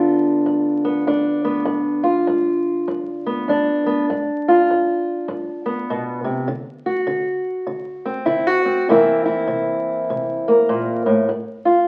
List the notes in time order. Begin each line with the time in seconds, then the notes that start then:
Already playing: G2 D3 B3 D4 F4
0.46 G2
0.85 B3
1.07 G2 D4
1.44 B3
1.65 G2
2.03 F4
2.27 G2
2.88 G2
3.26 B3
3.48 G2 D4
3.86 B3
4.10 G2
4.48 F4
4.70 G2
5.28 G2
5.66 B3
5.90 B2
6.24 C3
6.48 D3
6.86 F#4
7.07 D3
7.67 D3
8.05 C4
8.26 D3 E4
8.47 F#4
8.65 C4
8.89 C3 E3 A#3 C4 E4
9.25 E4
9.47 C3
10.10 C3
10.48 A#3
10.69 A#2
11.06 A2
11.29 G2
11.65 F4